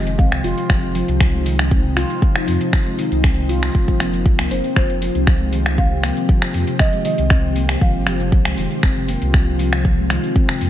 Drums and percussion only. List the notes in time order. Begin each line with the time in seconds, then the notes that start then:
0.07 closed hi-hat, shaker
0.19 kick, shaker
0.32 finger snap, closed hi-hat
0.44 open hi-hat, shaker
0.58 open hi-hat, shaker
0.70 finger snap, kick, shaker
0.83 closed hi-hat
0.95 open hi-hat, shaker
1.08 closed hi-hat, shaker
1.21 finger snap, kick, shaker
1.46 open hi-hat, shaker
1.59 finger snap, closed hi-hat, shaker
1.71 kick, shaker
1.97 finger snap, open hi-hat, shaker
2.10 closed hi-hat, shaker
2.22 kick, shaker
2.36 finger snap, closed hi-hat
2.48 open hi-hat, shaker
2.61 closed hi-hat, shaker
2.73 finger snap, kick, shaker
2.86 closed hi-hat
2.99 open hi-hat, shaker
3.12 closed hi-hat, shaker
3.24 finger snap, kick, shaker
3.37 closed hi-hat
3.49 open hi-hat, shaker
3.63 finger snap, closed hi-hat, shaker
3.75 kick, shaker
3.88 kick, closed hi-hat
4.00 finger snap, open hi-hat, shaker
4.14 closed hi-hat, shaker
4.26 kick, shaker
4.39 finger snap, closed hi-hat
4.51 open hi-hat, shaker
4.64 open hi-hat, shaker
4.76 finger snap, kick, shaker
4.90 closed hi-hat
5.02 open hi-hat, shaker
5.15 closed hi-hat, shaker
5.27 finger snap, kick, shaker
5.53 open hi-hat, shaker
5.66 finger snap, closed hi-hat, shaker
5.78 kick, shaker
6.04 finger snap, open hi-hat, shaker
6.17 closed hi-hat, shaker
6.29 kick, shaker
6.42 finger snap, closed hi-hat
6.54 open hi-hat, shaker
6.67 closed hi-hat, shaker
6.79 finger snap, kick, shaker
6.93 closed hi-hat
7.05 open hi-hat, shaker
7.18 closed hi-hat, shaker
7.30 finger snap, kick, shaker
7.56 open hi-hat, shaker
7.69 finger snap, closed hi-hat, shaker
7.81 kick, shaker
8.07 finger snap, open hi-hat, shaker
8.20 closed hi-hat, shaker
8.32 kick, shaker
8.45 finger snap, closed hi-hat
8.57 open hi-hat, shaker
8.71 open hi-hat, shaker
8.83 finger snap, kick, shaker
8.96 closed hi-hat
9.08 open hi-hat, shaker
9.22 closed hi-hat, shaker
9.34 finger snap, kick, shaker
9.59 open hi-hat, shaker
9.73 finger snap, closed hi-hat, shaker
9.85 kick, shaker
10.10 finger snap, open hi-hat, shaker
10.24 closed hi-hat, shaker
10.36 kick, shaker
10.49 finger snap, closed hi-hat
10.61 open hi-hat, shaker